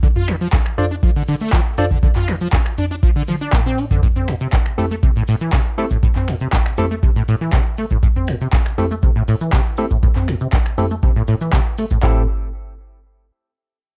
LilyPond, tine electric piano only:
\new Staff \with { instrumentName = "Tine electric piano" } { \time 4/4 \key a \minor \tempo 4 = 120 r4. <f' a' c'' d''>8 r4. <f' a' c'' d''>8 | r1 | r4. <c' e' g' a'>8 r4. <c' e' g' a'>8 | r4. <c' e' g' a'>8 r2 |
r4. <c' e' g' a'>8 r4. <c' e' g' a'>8 | r4. <c' e' g' a'>8 r2 | <c' e' g' a'>8 r2. r8 | }